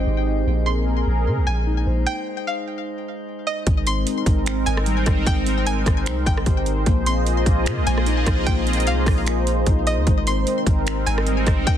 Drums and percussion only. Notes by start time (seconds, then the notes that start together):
3.67 kick, closed hi-hat
3.87 closed hi-hat
4.07 closed hi-hat
4.26 kick, closed hi-hat
4.46 finger snap, closed hi-hat
4.67 closed hi-hat
4.77 cross-stick
4.86 closed hi-hat
5.06 kick, cross-stick, closed hi-hat
5.27 kick, closed hi-hat
5.46 closed hi-hat
5.67 closed hi-hat
5.86 kick, cross-stick, closed hi-hat
6.06 finger snap, closed hi-hat
6.26 kick, closed hi-hat
6.37 cross-stick
6.46 kick, closed hi-hat
6.66 closed hi-hat
6.86 kick, closed hi-hat
7.06 closed hi-hat
7.27 closed hi-hat
7.46 kick, closed hi-hat
7.66 finger snap, closed hi-hat
7.87 closed hi-hat
7.98 cross-stick
8.06 closed hi-hat
8.27 kick, cross-stick, closed hi-hat
8.47 kick, closed hi-hat
8.67 closed hi-hat
8.73 closed hi-hat
8.80 closed hi-hat
8.87 closed hi-hat
9.06 kick, cross-stick, open hi-hat
9.27 finger snap, closed hi-hat
9.47 closed hi-hat
9.66 kick, closed hi-hat
9.87 closed hi-hat
10.07 kick, closed hi-hat
10.27 closed hi-hat
10.47 closed hi-hat
10.67 kick, closed hi-hat
10.87 finger snap, closed hi-hat
11.07 closed hi-hat
11.18 cross-stick
11.27 closed hi-hat
11.47 kick, cross-stick, closed hi-hat
11.67 kick, closed hi-hat